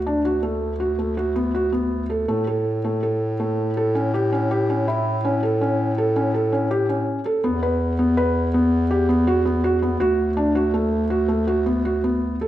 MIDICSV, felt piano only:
0, 0, Header, 1, 2, 480
1, 0, Start_track
1, 0, Tempo, 370370
1, 2964, Time_signature, 7, 2, 24, 8
1, 6801, Tempo, 366077
1, 14481, Tempo, 376648
1, 16230, End_track
2, 0, Start_track
2, 0, Title_t, "Felt piano"
2, 0, Program_c, 0, 0
2, 84, Note_on_c, 0, 62, 67
2, 273, Note_off_c, 0, 62, 0
2, 323, Note_on_c, 0, 66, 62
2, 511, Note_off_c, 0, 66, 0
2, 553, Note_on_c, 0, 57, 65
2, 935, Note_off_c, 0, 57, 0
2, 1035, Note_on_c, 0, 66, 62
2, 1225, Note_off_c, 0, 66, 0
2, 1278, Note_on_c, 0, 57, 58
2, 1469, Note_off_c, 0, 57, 0
2, 1519, Note_on_c, 0, 66, 63
2, 1711, Note_off_c, 0, 66, 0
2, 1758, Note_on_c, 0, 59, 62
2, 1949, Note_off_c, 0, 59, 0
2, 2003, Note_on_c, 0, 66, 66
2, 2193, Note_off_c, 0, 66, 0
2, 2234, Note_on_c, 0, 59, 61
2, 2623, Note_off_c, 0, 59, 0
2, 2718, Note_on_c, 0, 69, 56
2, 2914, Note_off_c, 0, 69, 0
2, 2959, Note_on_c, 0, 57, 69
2, 3155, Note_off_c, 0, 57, 0
2, 3204, Note_on_c, 0, 69, 63
2, 3591, Note_off_c, 0, 69, 0
2, 3686, Note_on_c, 0, 57, 69
2, 3880, Note_off_c, 0, 57, 0
2, 3923, Note_on_c, 0, 69, 62
2, 4311, Note_off_c, 0, 69, 0
2, 4401, Note_on_c, 0, 57, 66
2, 4788, Note_off_c, 0, 57, 0
2, 4885, Note_on_c, 0, 69, 66
2, 5079, Note_off_c, 0, 69, 0
2, 5119, Note_on_c, 0, 61, 63
2, 5314, Note_off_c, 0, 61, 0
2, 5365, Note_on_c, 0, 67, 68
2, 5558, Note_off_c, 0, 67, 0
2, 5602, Note_on_c, 0, 61, 63
2, 5796, Note_off_c, 0, 61, 0
2, 5843, Note_on_c, 0, 67, 68
2, 6036, Note_off_c, 0, 67, 0
2, 6085, Note_on_c, 0, 61, 62
2, 6277, Note_off_c, 0, 61, 0
2, 6321, Note_on_c, 0, 64, 73
2, 6704, Note_off_c, 0, 64, 0
2, 6799, Note_on_c, 0, 61, 71
2, 6993, Note_off_c, 0, 61, 0
2, 7037, Note_on_c, 0, 69, 62
2, 7231, Note_off_c, 0, 69, 0
2, 7280, Note_on_c, 0, 61, 68
2, 7663, Note_off_c, 0, 61, 0
2, 7763, Note_on_c, 0, 69, 66
2, 7953, Note_off_c, 0, 69, 0
2, 7998, Note_on_c, 0, 61, 67
2, 8190, Note_off_c, 0, 61, 0
2, 8237, Note_on_c, 0, 69, 69
2, 8428, Note_off_c, 0, 69, 0
2, 8475, Note_on_c, 0, 61, 66
2, 8667, Note_off_c, 0, 61, 0
2, 8715, Note_on_c, 0, 67, 73
2, 8907, Note_off_c, 0, 67, 0
2, 8955, Note_on_c, 0, 61, 60
2, 9339, Note_off_c, 0, 61, 0
2, 9433, Note_on_c, 0, 69, 65
2, 9625, Note_off_c, 0, 69, 0
2, 9674, Note_on_c, 0, 59, 77
2, 9865, Note_off_c, 0, 59, 0
2, 9919, Note_on_c, 0, 71, 65
2, 10301, Note_off_c, 0, 71, 0
2, 10395, Note_on_c, 0, 59, 68
2, 10586, Note_off_c, 0, 59, 0
2, 10637, Note_on_c, 0, 71, 74
2, 11018, Note_off_c, 0, 71, 0
2, 11119, Note_on_c, 0, 59, 73
2, 11499, Note_off_c, 0, 59, 0
2, 11598, Note_on_c, 0, 67, 70
2, 11787, Note_off_c, 0, 67, 0
2, 11837, Note_on_c, 0, 59, 71
2, 12026, Note_off_c, 0, 59, 0
2, 12078, Note_on_c, 0, 66, 78
2, 12267, Note_off_c, 0, 66, 0
2, 12316, Note_on_c, 0, 59, 64
2, 12506, Note_off_c, 0, 59, 0
2, 12559, Note_on_c, 0, 66, 76
2, 12748, Note_off_c, 0, 66, 0
2, 12801, Note_on_c, 0, 59, 66
2, 12989, Note_off_c, 0, 59, 0
2, 13032, Note_on_c, 0, 66, 83
2, 13417, Note_off_c, 0, 66, 0
2, 13514, Note_on_c, 0, 62, 69
2, 13707, Note_off_c, 0, 62, 0
2, 13756, Note_on_c, 0, 66, 67
2, 13949, Note_off_c, 0, 66, 0
2, 13998, Note_on_c, 0, 57, 70
2, 14385, Note_off_c, 0, 57, 0
2, 14477, Note_on_c, 0, 66, 67
2, 14667, Note_off_c, 0, 66, 0
2, 14709, Note_on_c, 0, 57, 64
2, 14902, Note_off_c, 0, 57, 0
2, 14951, Note_on_c, 0, 66, 65
2, 15144, Note_off_c, 0, 66, 0
2, 15189, Note_on_c, 0, 59, 60
2, 15383, Note_off_c, 0, 59, 0
2, 15431, Note_on_c, 0, 66, 69
2, 15625, Note_off_c, 0, 66, 0
2, 15669, Note_on_c, 0, 59, 58
2, 16061, Note_off_c, 0, 59, 0
2, 16148, Note_on_c, 0, 69, 64
2, 16230, Note_off_c, 0, 69, 0
2, 16230, End_track
0, 0, End_of_file